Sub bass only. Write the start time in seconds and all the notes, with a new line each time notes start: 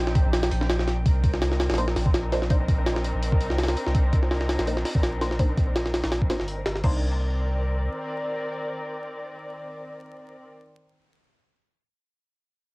Already playing: A#1
0.25 A#1
0.51 A#1
1.06 C2
1.70 A#1
1.96 A#1
3.14 A#1
3.40 C2
3.86 C2
4.59 A#1
4.95 A#1
6.04 A#1
6.40 G1
6.66 G1
6.84 C2